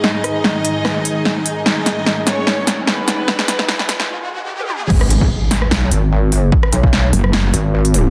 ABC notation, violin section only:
X:1
M:4/4
L:1/8
Q:"Swing 16ths" 1/4=148
K:G#m
V:1 name="Violin section"
[Dd]8 | [Dd]3 [Cc]3 [B,B]2- | [B,B]4 z4 | z8 |
z8 |]